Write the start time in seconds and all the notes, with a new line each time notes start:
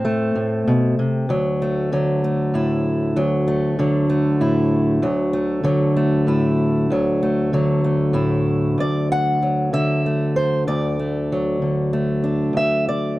Already playing: A2 C4
0.05 A3
0.35 A2
0.67 B2
0.99 C3
1.29 D2 F#3
1.62 A3
1.92 D3 F#3
2.24 A3
2.54 A2 E4
3.16 D2 F#3
3.48 A3
3.79 D3 F#3
4.09 A3
4.40 A2 E4
5.02 D2 F#3
5.33 A3
5.63 D3 F#3
5.96 A3
6.27 A2 E4
6.90 D2 F#3
7.23 A3
7.53 D3 F#3
7.84 A3
8.13 A2 E4
8.78 D2 D5
9.12 F#5
9.42 F#3
9.73 D3 E5
10.06 A3
10.36 C5
10.67 D2 D5
10.99 A3
11.32 F#3
11.62 D3
11.93 A3
12.24 D4
12.53 D2 E5
12.88 D5